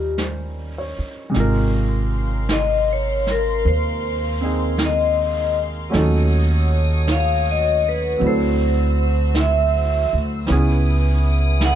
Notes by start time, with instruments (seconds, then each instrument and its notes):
Already playing: upright bass D#2, grand piano G3 C#4 D#4 F4 A#4, vibraphone G4
0.18 grand piano C5, brush sweep, snare, hi-hat pedal
0.78 grand piano C#5
0.99 muted upright bass stroke
1.30 grand piano C3 G#3
1.34 upright bass G#1, grand piano D#4 F4, string section A#4 F5 C6, brush sweep, snare
1.40 grand piano A#4
2.49 vibraphone D#5, brush sweep, snare, hi-hat pedal
2.93 vibraphone C#5
3.27 snare
3.31 vibraphone A#4
3.65 upright bass D#2, vibraphone C5, brush sweep
4.41 grand piano C4 D#4 G#4
4.78 brush sweep, snare, hi-hat pedal
4.85 vibraphone D#5
5.90 grand piano F#3 A3 C#4 D#4, string section F#4 C#5 D#6, brush sweep, snare
5.94 upright bass D#2, grand piano A4
7.07 brush sweep, snare, hi-hat pedal
7.12 vibraphone F5
7.51 vibraphone D#5
7.89 vibraphone B4
8.17 upright bass D2, grand piano F#3 C4, string section C5 E6, brush sweep
8.22 grand piano D4 E4
8.27 grand piano A4, vibraphone C5
9.35 brush sweep, snare, hi-hat pedal
9.40 vibraphone E5
10.13 upright bass D2
10.47 upright bass C#2, grand piano B3 C#4 E4, string section E4 B4 D#6, brush sweep, snare
10.52 grand piano G#4
11.61 brush sweep, snare, hi-hat pedal
11.65 vibraphone F#5